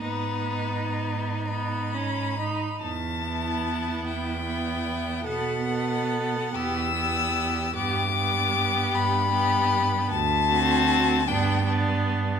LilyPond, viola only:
\new Staff \with { instrumentName = "Viola" } { \time 6/8 \key gis \minor \tempo 4. = 50 b4. b8 cis'8 dis'8 | \key e \minor r8 b4. b4 | b8 b4 b8 b4 | b8 b4. b4 |
r8 c'4 b8 b4 | }